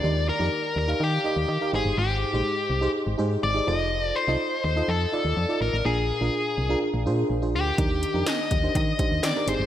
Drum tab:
HH |--------|--------|--------|--------|
SD |--------|--------|--------|--------|
BD |--------|--------|--------|--------|

HH |xxxxxxxx|
SD |--o---o-|
BD |o--ooo--|